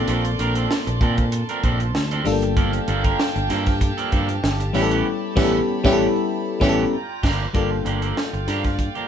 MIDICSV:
0, 0, Header, 1, 7, 480
1, 0, Start_track
1, 0, Key_signature, -2, "minor"
1, 0, Tempo, 621762
1, 63, Time_signature, 4, 2, 24, 8
1, 7009, End_track
2, 0, Start_track
2, 0, Title_t, "String section"
2, 0, Program_c, 0, 48
2, 0, Note_on_c, 0, 58, 71
2, 0, Note_on_c, 0, 74, 71
2, 0, Note_on_c, 0, 81, 63
2, 0, Note_on_c, 0, 84, 70
2, 1713, Note_off_c, 0, 74, 0
2, 1713, Note_off_c, 0, 84, 0
2, 1721, Note_off_c, 0, 58, 0
2, 1744, Note_on_c, 0, 67, 72
2, 1744, Note_on_c, 0, 77, 68
2, 1745, Note_on_c, 0, 79, 84
2, 3644, Note_off_c, 0, 77, 0
2, 3645, Note_off_c, 0, 79, 0
2, 3664, Note_on_c, 0, 73, 73
2, 3668, Note_on_c, 0, 83, 72
2, 5310, Note_off_c, 0, 81, 0
2, 5312, Note_off_c, 0, 67, 0
2, 5326, Note_off_c, 0, 73, 0
2, 5329, Note_off_c, 0, 83, 0
2, 5342, Note_on_c, 0, 65, 72
2, 5342, Note_on_c, 0, 82, 79
2, 5343, Note_on_c, 0, 74, 59
2, 5343, Note_on_c, 0, 79, 63
2, 5809, Note_off_c, 0, 65, 0
2, 5809, Note_off_c, 0, 79, 0
2, 5812, Note_off_c, 0, 74, 0
2, 5818, Note_off_c, 0, 82, 0
2, 5818, Note_on_c, 0, 65, 65
2, 5819, Note_on_c, 0, 79, 61
2, 5822, Note_on_c, 0, 74, 64
2, 5822, Note_on_c, 0, 77, 68
2, 7009, Note_off_c, 0, 65, 0
2, 7009, Note_off_c, 0, 74, 0
2, 7009, Note_off_c, 0, 77, 0
2, 7009, Note_off_c, 0, 79, 0
2, 7009, End_track
3, 0, Start_track
3, 0, Title_t, "FM electric piano"
3, 0, Program_c, 1, 5
3, 0, Control_c, 1, 64, 127
3, 0, Note_on_c, 1, 58, 81
3, 0, Note_on_c, 1, 60, 74
3, 0, Note_on_c, 1, 62, 66
3, 0, Note_on_c, 1, 65, 71
3, 0, Note_on_c, 1, 69, 88
3, 1706, Note_off_c, 1, 58, 0
3, 1709, Note_off_c, 1, 60, 0
3, 1712, Note_off_c, 1, 62, 0
3, 1714, Note_off_c, 1, 65, 0
3, 1716, Note_off_c, 1, 69, 0
3, 1733, Note_on_c, 1, 55, 85
3, 1739, Note_on_c, 1, 57, 57
3, 1743, Note_on_c, 1, 62, 78
3, 1747, Note_on_c, 1, 65, 65
3, 1751, Note_on_c, 1, 69, 87
3, 1754, Control_c, 1, 64, 0
3, 1788, Note_on_c, 1, 58, 75
3, 1795, Note_off_c, 1, 57, 0
3, 1877, Control_c, 1, 64, 127
3, 3627, Note_off_c, 1, 55, 0
3, 3632, Note_off_c, 1, 62, 0
3, 3634, Note_off_c, 1, 65, 0
3, 3636, Note_off_c, 1, 69, 0
3, 3653, Note_on_c, 1, 55, 85
3, 3655, Note_off_c, 1, 58, 0
3, 3656, Note_on_c, 1, 59, 66
3, 3661, Note_on_c, 1, 61, 75
3, 3666, Note_on_c, 1, 64, 76
3, 3671, Note_on_c, 1, 67, 67
3, 3674, Control_c, 1, 64, 0
3, 3721, Note_off_c, 1, 67, 0
3, 3722, Note_on_c, 1, 69, 87
3, 3825, Control_c, 1, 64, 127
3, 3893, Note_off_c, 1, 55, 0
3, 3895, Note_off_c, 1, 59, 0
3, 3897, Note_off_c, 1, 61, 0
3, 3900, Note_off_c, 1, 64, 0
3, 3928, Note_off_c, 1, 69, 0
3, 4133, Note_on_c, 1, 55, 90
3, 4137, Note_on_c, 1, 59, 99
3, 4142, Note_on_c, 1, 61, 82
3, 4146, Note_on_c, 1, 64, 86
3, 4151, Note_on_c, 1, 67, 92
3, 4201, Note_on_c, 1, 69, 95
3, 4304, Note_off_c, 1, 55, 0
3, 4306, Note_off_c, 1, 59, 0
3, 4309, Note_off_c, 1, 61, 0
3, 4311, Note_off_c, 1, 64, 0
3, 4314, Note_off_c, 1, 67, 0
3, 4343, Note_off_c, 1, 69, 0
3, 4505, Note_on_c, 1, 55, 102
3, 4509, Note_on_c, 1, 59, 104
3, 4514, Note_on_c, 1, 61, 105
3, 4519, Note_on_c, 1, 64, 111
3, 4523, Note_on_c, 1, 67, 105
3, 4573, Note_on_c, 1, 69, 110
3, 4668, Note_off_c, 1, 55, 0
3, 4671, Note_off_c, 1, 59, 0
3, 4673, Note_off_c, 1, 61, 0
3, 4676, Note_off_c, 1, 64, 0
3, 4678, Note_off_c, 1, 67, 0
3, 4707, Note_off_c, 1, 69, 0
3, 5094, Note_on_c, 1, 55, 93
3, 5101, Note_on_c, 1, 59, 93
3, 5104, Note_on_c, 1, 61, 99
3, 5110, Note_on_c, 1, 64, 95
3, 5113, Note_on_c, 1, 67, 97
3, 5164, Note_on_c, 1, 69, 99
3, 5264, Note_off_c, 1, 55, 0
3, 5268, Note_off_c, 1, 59, 0
3, 5270, Note_off_c, 1, 61, 0
3, 5273, Note_off_c, 1, 64, 0
3, 5275, Note_off_c, 1, 67, 0
3, 5305, Note_off_c, 1, 69, 0
3, 5353, Control_c, 1, 64, 0
3, 5480, Control_c, 1, 64, 127
3, 5816, Note_on_c, 1, 55, 69
3, 5821, Note_on_c, 1, 58, 66
3, 5824, Note_on_c, 1, 62, 66
3, 5829, Note_on_c, 1, 65, 65
3, 5834, Control_c, 1, 64, 0
3, 5834, Note_on_c, 1, 69, 79
3, 5953, Control_c, 1, 64, 127
3, 7009, Note_off_c, 1, 55, 0
3, 7009, Note_off_c, 1, 58, 0
3, 7009, Note_off_c, 1, 62, 0
3, 7009, Note_off_c, 1, 65, 0
3, 7009, Note_off_c, 1, 69, 0
3, 7009, End_track
4, 0, Start_track
4, 0, Title_t, "Clean electric guitar"
4, 0, Program_c, 2, 27
4, 61, Note_on_c, 2, 53, 80
4, 66, Note_on_c, 2, 60, 75
4, 68, Note_on_c, 2, 62, 77
4, 72, Note_on_c, 2, 69, 93
4, 183, Note_off_c, 2, 69, 0
4, 187, Note_off_c, 2, 62, 0
4, 191, Note_off_c, 2, 60, 0
4, 230, Note_off_c, 2, 53, 0
4, 302, Note_on_c, 2, 53, 66
4, 306, Note_on_c, 2, 60, 72
4, 312, Note_on_c, 2, 62, 77
4, 314, Note_on_c, 2, 70, 88
4, 425, Note_off_c, 2, 62, 0
4, 427, Note_off_c, 2, 70, 0
4, 429, Note_off_c, 2, 60, 0
4, 430, Note_on_c, 2, 69, 55
4, 432, Note_off_c, 2, 53, 0
4, 434, Note_on_c, 2, 62, 54
4, 438, Note_on_c, 2, 60, 57
4, 441, Note_on_c, 2, 53, 55
4, 548, Note_off_c, 2, 69, 0
4, 551, Note_off_c, 2, 62, 0
4, 553, Note_off_c, 2, 60, 0
4, 554, Note_off_c, 2, 53, 0
4, 783, Note_on_c, 2, 53, 77
4, 787, Note_on_c, 2, 60, 81
4, 792, Note_on_c, 2, 62, 73
4, 793, Note_on_c, 2, 69, 84
4, 903, Note_off_c, 2, 69, 0
4, 908, Note_off_c, 2, 62, 0
4, 912, Note_off_c, 2, 60, 0
4, 951, Note_off_c, 2, 53, 0
4, 1153, Note_on_c, 2, 70, 65
4, 1158, Note_on_c, 2, 62, 58
4, 1161, Note_on_c, 2, 60, 52
4, 1165, Note_on_c, 2, 53, 51
4, 1253, Note_off_c, 2, 53, 0
4, 1258, Note_off_c, 2, 60, 0
4, 1261, Note_off_c, 2, 62, 0
4, 1263, Note_on_c, 2, 53, 86
4, 1267, Note_on_c, 2, 60, 87
4, 1270, Note_off_c, 2, 70, 0
4, 1270, Note_on_c, 2, 62, 95
4, 1273, Note_on_c, 2, 69, 91
4, 1383, Note_off_c, 2, 69, 0
4, 1388, Note_off_c, 2, 62, 0
4, 1392, Note_off_c, 2, 60, 0
4, 1431, Note_off_c, 2, 53, 0
4, 1634, Note_on_c, 2, 69, 81
4, 1637, Note_on_c, 2, 62, 67
4, 1641, Note_on_c, 2, 60, 64
4, 1645, Note_on_c, 2, 53, 62
4, 1736, Note_off_c, 2, 53, 0
4, 1742, Note_off_c, 2, 62, 0
4, 1744, Note_off_c, 2, 69, 0
4, 1745, Note_off_c, 2, 60, 0
4, 1982, Note_on_c, 2, 53, 82
4, 1986, Note_on_c, 2, 58, 91
4, 1991, Note_on_c, 2, 62, 85
4, 1994, Note_on_c, 2, 69, 99
4, 2105, Note_off_c, 2, 69, 0
4, 2108, Note_off_c, 2, 62, 0
4, 2113, Note_off_c, 2, 58, 0
4, 2150, Note_off_c, 2, 53, 0
4, 2222, Note_on_c, 2, 53, 73
4, 2227, Note_on_c, 2, 58, 81
4, 2230, Note_on_c, 2, 62, 80
4, 2233, Note_on_c, 2, 69, 94
4, 2344, Note_off_c, 2, 62, 0
4, 2347, Note_off_c, 2, 69, 0
4, 2348, Note_off_c, 2, 58, 0
4, 2350, Note_on_c, 2, 70, 69
4, 2352, Note_off_c, 2, 53, 0
4, 2354, Note_on_c, 2, 62, 68
4, 2358, Note_on_c, 2, 58, 50
4, 2361, Note_on_c, 2, 53, 51
4, 2469, Note_off_c, 2, 70, 0
4, 2470, Note_off_c, 2, 62, 0
4, 2472, Note_off_c, 2, 58, 0
4, 2474, Note_off_c, 2, 53, 0
4, 2699, Note_on_c, 2, 53, 82
4, 2703, Note_on_c, 2, 58, 87
4, 2707, Note_on_c, 2, 62, 88
4, 2710, Note_on_c, 2, 69, 91
4, 2821, Note_off_c, 2, 69, 0
4, 2827, Note_off_c, 2, 62, 0
4, 2830, Note_off_c, 2, 58, 0
4, 2869, Note_off_c, 2, 53, 0
4, 3069, Note_on_c, 2, 69, 60
4, 3074, Note_on_c, 2, 62, 55
4, 3078, Note_on_c, 2, 58, 58
4, 3082, Note_on_c, 2, 53, 52
4, 3171, Note_off_c, 2, 53, 0
4, 3175, Note_off_c, 2, 58, 0
4, 3179, Note_off_c, 2, 62, 0
4, 3180, Note_on_c, 2, 53, 88
4, 3182, Note_off_c, 2, 69, 0
4, 3184, Note_on_c, 2, 58, 92
4, 3189, Note_on_c, 2, 62, 96
4, 3192, Note_on_c, 2, 69, 90
4, 3302, Note_off_c, 2, 69, 0
4, 3308, Note_off_c, 2, 62, 0
4, 3312, Note_off_c, 2, 58, 0
4, 3349, Note_off_c, 2, 53, 0
4, 3660, Note_on_c, 2, 52, 94
4, 3665, Note_on_c, 2, 59, 89
4, 3668, Note_on_c, 2, 61, 93
4, 3672, Note_on_c, 2, 67, 88
4, 3783, Note_off_c, 2, 67, 0
4, 3788, Note_off_c, 2, 61, 0
4, 3790, Note_off_c, 2, 59, 0
4, 3792, Note_on_c, 2, 67, 70
4, 3795, Note_off_c, 2, 52, 0
4, 3797, Note_on_c, 2, 61, 69
4, 3799, Note_on_c, 2, 59, 55
4, 3804, Note_on_c, 2, 52, 51
4, 3903, Note_off_c, 2, 67, 0
4, 3905, Note_off_c, 2, 61, 0
4, 3906, Note_off_c, 2, 59, 0
4, 3909, Note_off_c, 2, 52, 0
4, 4142, Note_on_c, 2, 52, 122
4, 4147, Note_on_c, 2, 59, 112
4, 4149, Note_on_c, 2, 61, 113
4, 4153, Note_on_c, 2, 69, 108
4, 4309, Note_off_c, 2, 52, 0
4, 4312, Note_off_c, 2, 59, 0
4, 4313, Note_off_c, 2, 61, 0
4, 4315, Note_off_c, 2, 69, 0
4, 4513, Note_on_c, 2, 52, 96
4, 4516, Note_on_c, 2, 59, 102
4, 4521, Note_on_c, 2, 61, 102
4, 4524, Note_on_c, 2, 67, 104
4, 4673, Note_off_c, 2, 52, 0
4, 4675, Note_off_c, 2, 59, 0
4, 4677, Note_off_c, 2, 61, 0
4, 4679, Note_off_c, 2, 67, 0
4, 5103, Note_on_c, 2, 52, 107
4, 5107, Note_on_c, 2, 59, 102
4, 5112, Note_on_c, 2, 61, 101
4, 5115, Note_on_c, 2, 67, 96
4, 5270, Note_off_c, 2, 52, 0
4, 5272, Note_off_c, 2, 59, 0
4, 5275, Note_off_c, 2, 61, 0
4, 5277, Note_off_c, 2, 67, 0
4, 5582, Note_on_c, 2, 67, 104
4, 5586, Note_on_c, 2, 62, 102
4, 5590, Note_on_c, 2, 58, 94
4, 5593, Note_on_c, 2, 53, 100
4, 5749, Note_off_c, 2, 67, 0
4, 5751, Note_off_c, 2, 62, 0
4, 5754, Note_off_c, 2, 58, 0
4, 5756, Note_off_c, 2, 53, 0
4, 5821, Note_on_c, 2, 53, 71
4, 5826, Note_on_c, 2, 58, 83
4, 5830, Note_on_c, 2, 62, 80
4, 5834, Note_on_c, 2, 67, 82
4, 5943, Note_off_c, 2, 67, 0
4, 5948, Note_off_c, 2, 62, 0
4, 5951, Note_off_c, 2, 58, 0
4, 5990, Note_off_c, 2, 53, 0
4, 6064, Note_on_c, 2, 53, 68
4, 6070, Note_on_c, 2, 58, 75
4, 6073, Note_on_c, 2, 62, 78
4, 6076, Note_on_c, 2, 67, 80
4, 6189, Note_off_c, 2, 62, 0
4, 6190, Note_off_c, 2, 67, 0
4, 6192, Note_off_c, 2, 58, 0
4, 6193, Note_on_c, 2, 69, 69
4, 6195, Note_off_c, 2, 53, 0
4, 6199, Note_on_c, 2, 62, 54
4, 6201, Note_on_c, 2, 58, 57
4, 6205, Note_on_c, 2, 53, 58
4, 6310, Note_off_c, 2, 69, 0
4, 6313, Note_off_c, 2, 62, 0
4, 6314, Note_off_c, 2, 58, 0
4, 6316, Note_off_c, 2, 53, 0
4, 6545, Note_on_c, 2, 53, 77
4, 6548, Note_on_c, 2, 58, 78
4, 6553, Note_on_c, 2, 62, 91
4, 6557, Note_on_c, 2, 67, 96
4, 6665, Note_off_c, 2, 67, 0
4, 6669, Note_off_c, 2, 62, 0
4, 6673, Note_off_c, 2, 58, 0
4, 6712, Note_off_c, 2, 53, 0
4, 6911, Note_on_c, 2, 67, 62
4, 6916, Note_on_c, 2, 62, 52
4, 6921, Note_on_c, 2, 58, 53
4, 6923, Note_on_c, 2, 53, 48
4, 7009, Note_off_c, 2, 53, 0
4, 7009, Note_off_c, 2, 58, 0
4, 7009, Note_off_c, 2, 62, 0
4, 7009, Note_off_c, 2, 67, 0
4, 7009, End_track
5, 0, Start_track
5, 0, Title_t, "Fingered electric bass"
5, 0, Program_c, 3, 33
5, 61, Note_on_c, 3, 34, 98
5, 263, Note_off_c, 3, 34, 0
5, 302, Note_on_c, 3, 34, 85
5, 504, Note_off_c, 3, 34, 0
5, 672, Note_on_c, 3, 34, 89
5, 765, Note_off_c, 3, 34, 0
5, 779, Note_on_c, 3, 46, 100
5, 1091, Note_off_c, 3, 46, 0
5, 1262, Note_on_c, 3, 34, 85
5, 1504, Note_off_c, 3, 34, 0
5, 1504, Note_on_c, 3, 38, 81
5, 1706, Note_off_c, 3, 38, 0
5, 1745, Note_on_c, 3, 31, 93
5, 2147, Note_off_c, 3, 31, 0
5, 2222, Note_on_c, 3, 31, 109
5, 2424, Note_off_c, 3, 31, 0
5, 2591, Note_on_c, 3, 31, 100
5, 2685, Note_off_c, 3, 31, 0
5, 2705, Note_on_c, 3, 43, 103
5, 3015, Note_off_c, 3, 43, 0
5, 3185, Note_on_c, 3, 43, 75
5, 3386, Note_off_c, 3, 43, 0
5, 3423, Note_on_c, 3, 31, 94
5, 3625, Note_off_c, 3, 31, 0
5, 3662, Note_on_c, 3, 33, 91
5, 3864, Note_off_c, 3, 33, 0
5, 4144, Note_on_c, 3, 33, 106
5, 4310, Note_off_c, 3, 33, 0
5, 4513, Note_on_c, 3, 33, 104
5, 4672, Note_off_c, 3, 33, 0
5, 5105, Note_on_c, 3, 33, 84
5, 5270, Note_off_c, 3, 33, 0
5, 5585, Note_on_c, 3, 31, 95
5, 5750, Note_off_c, 3, 31, 0
5, 5825, Note_on_c, 3, 31, 91
5, 6026, Note_off_c, 3, 31, 0
5, 6060, Note_on_c, 3, 31, 96
5, 6263, Note_off_c, 3, 31, 0
5, 6432, Note_on_c, 3, 31, 82
5, 6525, Note_off_c, 3, 31, 0
5, 6543, Note_on_c, 3, 43, 90
5, 6854, Note_off_c, 3, 43, 0
5, 7009, End_track
6, 0, Start_track
6, 0, Title_t, "Muted clean electric guitar strokes"
6, 193, Note_on_c, 9, 29, 45
6, 270, Note_off_c, 9, 29, 0
6, 671, Note_on_c, 9, 29, 47
6, 748, Note_off_c, 9, 29, 0
6, 912, Note_on_c, 9, 29, 62
6, 990, Note_off_c, 9, 29, 0
6, 1025, Note_on_c, 9, 29, 33
6, 1102, Note_off_c, 9, 29, 0
6, 1392, Note_on_c, 9, 29, 45
6, 1470, Note_off_c, 9, 29, 0
6, 1503, Note_on_c, 9, 29, 36
6, 1580, Note_off_c, 9, 29, 0
6, 1745, Note_on_c, 9, 29, 41
6, 1823, Note_off_c, 9, 29, 0
6, 1875, Note_on_c, 9, 29, 45
6, 1952, Note_off_c, 9, 29, 0
6, 2114, Note_on_c, 9, 29, 44
6, 2191, Note_off_c, 9, 29, 0
6, 2591, Note_on_c, 9, 29, 49
6, 2669, Note_off_c, 9, 29, 0
6, 2830, Note_on_c, 9, 29, 53
6, 2908, Note_off_c, 9, 29, 0
6, 2942, Note_on_c, 9, 29, 45
6, 3019, Note_off_c, 9, 29, 0
6, 3312, Note_on_c, 9, 29, 48
6, 3389, Note_off_c, 9, 29, 0
6, 3423, Note_on_c, 9, 29, 43
6, 3500, Note_off_c, 9, 29, 0
6, 3549, Note_on_c, 9, 29, 47
6, 3627, Note_off_c, 9, 29, 0
6, 5952, Note_on_c, 9, 29, 46
6, 6029, Note_off_c, 9, 29, 0
6, 6435, Note_on_c, 9, 29, 48
6, 6513, Note_off_c, 9, 29, 0
6, 6674, Note_on_c, 9, 29, 39
6, 6752, Note_off_c, 9, 29, 0
6, 6782, Note_on_c, 9, 29, 40
6, 6859, Note_off_c, 9, 29, 0
6, 7009, End_track
7, 0, Start_track
7, 0, Title_t, "Drums"
7, 59, Note_on_c, 9, 42, 83
7, 136, Note_off_c, 9, 42, 0
7, 191, Note_on_c, 9, 42, 50
7, 268, Note_off_c, 9, 42, 0
7, 303, Note_on_c, 9, 42, 77
7, 380, Note_off_c, 9, 42, 0
7, 427, Note_on_c, 9, 42, 54
7, 504, Note_off_c, 9, 42, 0
7, 545, Note_on_c, 9, 38, 110
7, 622, Note_off_c, 9, 38, 0
7, 673, Note_on_c, 9, 42, 51
7, 751, Note_off_c, 9, 42, 0
7, 779, Note_on_c, 9, 36, 99
7, 780, Note_on_c, 9, 42, 75
7, 856, Note_off_c, 9, 36, 0
7, 857, Note_off_c, 9, 42, 0
7, 908, Note_on_c, 9, 42, 51
7, 911, Note_on_c, 9, 36, 84
7, 986, Note_off_c, 9, 42, 0
7, 989, Note_off_c, 9, 36, 0
7, 1020, Note_on_c, 9, 42, 93
7, 1098, Note_off_c, 9, 42, 0
7, 1150, Note_on_c, 9, 42, 49
7, 1227, Note_off_c, 9, 42, 0
7, 1262, Note_on_c, 9, 42, 68
7, 1263, Note_on_c, 9, 36, 83
7, 1339, Note_off_c, 9, 42, 0
7, 1340, Note_off_c, 9, 36, 0
7, 1390, Note_on_c, 9, 42, 53
7, 1467, Note_off_c, 9, 42, 0
7, 1504, Note_on_c, 9, 38, 118
7, 1581, Note_off_c, 9, 38, 0
7, 1631, Note_on_c, 9, 42, 53
7, 1709, Note_off_c, 9, 42, 0
7, 1740, Note_on_c, 9, 46, 64
7, 1817, Note_off_c, 9, 46, 0
7, 1869, Note_on_c, 9, 42, 47
7, 1947, Note_off_c, 9, 42, 0
7, 1982, Note_on_c, 9, 36, 101
7, 1982, Note_on_c, 9, 42, 75
7, 2059, Note_off_c, 9, 36, 0
7, 2059, Note_off_c, 9, 42, 0
7, 2109, Note_on_c, 9, 42, 57
7, 2186, Note_off_c, 9, 42, 0
7, 2222, Note_on_c, 9, 42, 74
7, 2299, Note_off_c, 9, 42, 0
7, 2349, Note_on_c, 9, 42, 55
7, 2351, Note_on_c, 9, 36, 84
7, 2426, Note_off_c, 9, 42, 0
7, 2428, Note_off_c, 9, 36, 0
7, 2467, Note_on_c, 9, 38, 112
7, 2544, Note_off_c, 9, 38, 0
7, 2593, Note_on_c, 9, 42, 46
7, 2671, Note_off_c, 9, 42, 0
7, 2702, Note_on_c, 9, 42, 82
7, 2707, Note_on_c, 9, 38, 37
7, 2779, Note_off_c, 9, 42, 0
7, 2784, Note_off_c, 9, 38, 0
7, 2828, Note_on_c, 9, 42, 50
7, 2832, Note_on_c, 9, 36, 84
7, 2835, Note_on_c, 9, 38, 33
7, 2906, Note_off_c, 9, 42, 0
7, 2909, Note_off_c, 9, 36, 0
7, 2912, Note_off_c, 9, 38, 0
7, 2942, Note_on_c, 9, 36, 89
7, 2942, Note_on_c, 9, 42, 96
7, 3019, Note_off_c, 9, 36, 0
7, 3019, Note_off_c, 9, 42, 0
7, 3071, Note_on_c, 9, 42, 48
7, 3149, Note_off_c, 9, 42, 0
7, 3182, Note_on_c, 9, 42, 63
7, 3184, Note_on_c, 9, 36, 84
7, 3259, Note_off_c, 9, 42, 0
7, 3262, Note_off_c, 9, 36, 0
7, 3310, Note_on_c, 9, 42, 52
7, 3387, Note_off_c, 9, 42, 0
7, 3426, Note_on_c, 9, 38, 124
7, 3503, Note_off_c, 9, 38, 0
7, 3555, Note_on_c, 9, 42, 57
7, 3632, Note_off_c, 9, 42, 0
7, 3662, Note_on_c, 9, 46, 60
7, 3739, Note_off_c, 9, 46, 0
7, 3793, Note_on_c, 9, 42, 52
7, 3870, Note_off_c, 9, 42, 0
7, 4144, Note_on_c, 9, 36, 115
7, 4144, Note_on_c, 9, 49, 86
7, 4150, Note_on_c, 9, 38, 108
7, 4221, Note_off_c, 9, 36, 0
7, 4221, Note_off_c, 9, 49, 0
7, 4227, Note_off_c, 9, 38, 0
7, 4513, Note_on_c, 9, 36, 108
7, 4520, Note_on_c, 9, 38, 99
7, 4591, Note_off_c, 9, 36, 0
7, 4597, Note_off_c, 9, 38, 0
7, 5104, Note_on_c, 9, 36, 104
7, 5111, Note_on_c, 9, 38, 91
7, 5181, Note_off_c, 9, 36, 0
7, 5188, Note_off_c, 9, 38, 0
7, 5585, Note_on_c, 9, 36, 96
7, 5586, Note_on_c, 9, 49, 76
7, 5592, Note_on_c, 9, 38, 105
7, 5662, Note_off_c, 9, 36, 0
7, 5664, Note_off_c, 9, 49, 0
7, 5669, Note_off_c, 9, 38, 0
7, 5825, Note_on_c, 9, 36, 100
7, 5825, Note_on_c, 9, 42, 84
7, 5902, Note_off_c, 9, 36, 0
7, 5902, Note_off_c, 9, 42, 0
7, 6067, Note_on_c, 9, 42, 66
7, 6144, Note_off_c, 9, 42, 0
7, 6193, Note_on_c, 9, 42, 47
7, 6270, Note_off_c, 9, 42, 0
7, 6311, Note_on_c, 9, 38, 101
7, 6388, Note_off_c, 9, 38, 0
7, 6438, Note_on_c, 9, 42, 33
7, 6515, Note_off_c, 9, 42, 0
7, 6546, Note_on_c, 9, 42, 80
7, 6550, Note_on_c, 9, 38, 31
7, 6623, Note_off_c, 9, 42, 0
7, 6628, Note_off_c, 9, 38, 0
7, 6672, Note_on_c, 9, 42, 41
7, 6675, Note_on_c, 9, 36, 77
7, 6679, Note_on_c, 9, 38, 27
7, 6749, Note_off_c, 9, 42, 0
7, 6752, Note_off_c, 9, 36, 0
7, 6756, Note_off_c, 9, 38, 0
7, 6784, Note_on_c, 9, 36, 83
7, 6785, Note_on_c, 9, 42, 87
7, 6861, Note_off_c, 9, 36, 0
7, 6862, Note_off_c, 9, 42, 0
7, 6912, Note_on_c, 9, 42, 29
7, 6989, Note_off_c, 9, 42, 0
7, 7009, End_track
0, 0, End_of_file